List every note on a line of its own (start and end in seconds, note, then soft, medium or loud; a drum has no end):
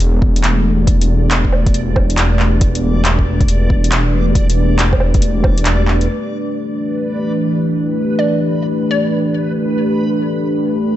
0.00 6.08 E1 medium
0.00 10.96 A3 medium
0.00 10.96 D4 medium
0.00 10.96 G4 medium
0.00 0.47 A4 medium
0.00 10.96 B4 medium
0.00 6.10 D5 medium
0.00 closed hi-hat soft
0.22 kick loud
0.36 closed hi-hat soft
0.44 clap loud
0.44 closed hi-hat medium
0.87 kick loud
0.87 closed hi-hat soft
1.01 closed hi-hat soft
1.31 clap loud
1.31 closed hi-hat medium
1.45 kick medium
1.53 low woodblock soft
1.66 kick loud
1.66 closed hi-hat soft
1.74 closed hi-hat medium
1.96 kick loud
1.96 low woodblock soft
2.10 closed hi-hat soft
2.18 clap loud
2.18 closed hi-hat medium
2.39 clap medium
2.61 kick loud
2.61 closed hi-hat medium
2.75 closed hi-hat medium
3.05 clap medium
3.05 closed hi-hat medium
3.19 kick medium
3.41 kick loud
3.41 closed hi-hat soft
3.48 closed hi-hat medium
3.70 kick medium
3.84 closed hi-hat soft
3.92 clap loud
3.92 closed hi-hat medium
4.35 kick loud
4.35 closed hi-hat medium
4.50 closed hi-hat medium
4.79 clap loud
4.79 closed hi-hat medium
4.93 kick medium
4.93 low woodblock soft
5.00 low woodblock soft
5.14 kick loud
5.14 closed hi-hat soft
5.22 closed hi-hat medium
5.44 kick loud
5.44 low woodblock medium
5.58 closed hi-hat medium
5.66 clap loud
5.66 closed hi-hat medium
5.88 clap medium
6.01 closed hi-hat soft
6.09 10.96 E3 medium
6.09 10.96 B4 medium
8.19 8.48 D5 medium
8.91 9.35 D5 medium